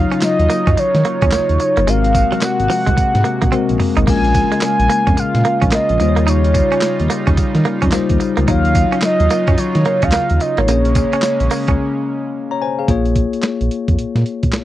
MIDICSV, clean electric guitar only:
0, 0, Header, 1, 3, 480
1, 0, Start_track
1, 0, Key_signature, -5, "minor"
1, 0, Tempo, 550459
1, 1632, Time_signature, 4, 2, 24, 8
1, 12766, End_track
2, 0, Start_track
2, 0, Title_t, "Clean electric guitar"
2, 0, Program_c, 0, 27
2, 101, Note_on_c, 0, 61, 77
2, 170, Note_off_c, 0, 61, 0
2, 433, Note_on_c, 0, 58, 86
2, 546, Note_off_c, 0, 58, 0
2, 585, Note_on_c, 0, 61, 79
2, 653, Note_off_c, 0, 61, 0
2, 916, Note_on_c, 0, 58, 74
2, 1028, Note_off_c, 0, 58, 0
2, 1067, Note_on_c, 0, 61, 86
2, 1133, Note_off_c, 0, 61, 0
2, 1157, Note_on_c, 0, 58, 96
2, 1268, Note_off_c, 0, 58, 0
2, 1546, Note_on_c, 0, 58, 85
2, 1613, Note_off_c, 0, 58, 0
2, 1634, Note_on_c, 0, 56, 100
2, 1747, Note_off_c, 0, 56, 0
2, 2025, Note_on_c, 0, 54, 73
2, 2092, Note_off_c, 0, 54, 0
2, 2352, Note_on_c, 0, 53, 87
2, 2465, Note_off_c, 0, 53, 0
2, 2498, Note_on_c, 0, 56, 80
2, 2568, Note_off_c, 0, 56, 0
2, 2827, Note_on_c, 0, 58, 77
2, 2942, Note_off_c, 0, 58, 0
2, 2979, Note_on_c, 0, 58, 83
2, 3049, Note_off_c, 0, 58, 0
2, 3068, Note_on_c, 0, 60, 98
2, 3183, Note_off_c, 0, 60, 0
2, 3459, Note_on_c, 0, 63, 81
2, 3529, Note_off_c, 0, 63, 0
2, 3550, Note_on_c, 0, 58, 92
2, 3664, Note_off_c, 0, 58, 0
2, 3939, Note_on_c, 0, 56, 76
2, 4008, Note_off_c, 0, 56, 0
2, 4269, Note_on_c, 0, 58, 85
2, 4383, Note_off_c, 0, 58, 0
2, 4420, Note_on_c, 0, 61, 77
2, 4489, Note_off_c, 0, 61, 0
2, 4751, Note_on_c, 0, 58, 79
2, 4865, Note_off_c, 0, 58, 0
2, 4897, Note_on_c, 0, 61, 84
2, 4967, Note_off_c, 0, 61, 0
2, 4988, Note_on_c, 0, 58, 89
2, 5103, Note_off_c, 0, 58, 0
2, 5375, Note_on_c, 0, 58, 79
2, 5446, Note_off_c, 0, 58, 0
2, 5464, Note_on_c, 0, 63, 104
2, 5580, Note_off_c, 0, 63, 0
2, 5858, Note_on_c, 0, 61, 73
2, 5928, Note_off_c, 0, 61, 0
2, 6190, Note_on_c, 0, 58, 78
2, 6304, Note_off_c, 0, 58, 0
2, 6339, Note_on_c, 0, 61, 77
2, 6409, Note_off_c, 0, 61, 0
2, 6673, Note_on_c, 0, 58, 79
2, 6785, Note_off_c, 0, 58, 0
2, 6818, Note_on_c, 0, 61, 92
2, 6888, Note_off_c, 0, 61, 0
2, 6912, Note_on_c, 0, 58, 100
2, 7025, Note_off_c, 0, 58, 0
2, 7299, Note_on_c, 0, 58, 79
2, 7369, Note_off_c, 0, 58, 0
2, 7394, Note_on_c, 0, 63, 99
2, 7506, Note_off_c, 0, 63, 0
2, 7782, Note_on_c, 0, 61, 80
2, 7851, Note_off_c, 0, 61, 0
2, 8116, Note_on_c, 0, 58, 82
2, 8228, Note_off_c, 0, 58, 0
2, 8265, Note_on_c, 0, 61, 76
2, 8333, Note_off_c, 0, 61, 0
2, 8595, Note_on_c, 0, 58, 76
2, 8707, Note_off_c, 0, 58, 0
2, 8745, Note_on_c, 0, 61, 89
2, 8812, Note_off_c, 0, 61, 0
2, 8838, Note_on_c, 0, 58, 99
2, 8949, Note_off_c, 0, 58, 0
2, 9228, Note_on_c, 0, 58, 81
2, 9294, Note_off_c, 0, 58, 0
2, 9319, Note_on_c, 0, 58, 104
2, 9429, Note_off_c, 0, 58, 0
2, 9709, Note_on_c, 0, 61, 78
2, 9775, Note_off_c, 0, 61, 0
2, 10038, Note_on_c, 0, 58, 76
2, 10149, Note_off_c, 0, 58, 0
2, 10189, Note_on_c, 0, 61, 80
2, 10255, Note_off_c, 0, 61, 0
2, 12766, End_track
3, 0, Start_track
3, 0, Title_t, "Muted clean electric guitar strokes"
3, 191, Note_on_c, 9, 29, 51
3, 279, Note_off_c, 9, 29, 0
3, 675, Note_on_c, 9, 29, 48
3, 762, Note_off_c, 9, 29, 0
3, 1395, Note_on_c, 9, 29, 47
3, 1483, Note_off_c, 9, 29, 0
3, 1872, Note_on_c, 9, 29, 47
3, 1959, Note_off_c, 9, 29, 0
3, 2114, Note_on_c, 9, 29, 47
3, 2201, Note_off_c, 9, 29, 0
3, 2589, Note_on_c, 9, 29, 47
3, 2676, Note_off_c, 9, 29, 0
3, 3310, Note_on_c, 9, 29, 45
3, 3397, Note_off_c, 9, 29, 0
3, 3792, Note_on_c, 9, 29, 45
3, 3879, Note_off_c, 9, 29, 0
3, 4029, Note_on_c, 9, 29, 46
3, 4116, Note_off_c, 9, 29, 0
3, 4509, Note_on_c, 9, 29, 51
3, 4596, Note_off_c, 9, 29, 0
3, 5230, Note_on_c, 9, 29, 49
3, 5317, Note_off_c, 9, 29, 0
3, 5705, Note_on_c, 9, 29, 44
3, 5792, Note_off_c, 9, 29, 0
3, 5948, Note_on_c, 9, 29, 51
3, 6035, Note_off_c, 9, 29, 0
3, 6430, Note_on_c, 9, 29, 50
3, 6517, Note_off_c, 9, 29, 0
3, 7150, Note_on_c, 9, 29, 45
3, 7238, Note_off_c, 9, 29, 0
3, 7633, Note_on_c, 9, 29, 45
3, 7720, Note_off_c, 9, 29, 0
3, 7875, Note_on_c, 9, 29, 47
3, 7962, Note_off_c, 9, 29, 0
3, 8357, Note_on_c, 9, 29, 51
3, 8444, Note_off_c, 9, 29, 0
3, 9079, Note_on_c, 9, 29, 47
3, 9166, Note_off_c, 9, 29, 0
3, 9560, Note_on_c, 9, 29, 49
3, 9648, Note_off_c, 9, 29, 0
3, 9799, Note_on_c, 9, 29, 48
3, 9887, Note_off_c, 9, 29, 0
3, 12766, End_track
0, 0, End_of_file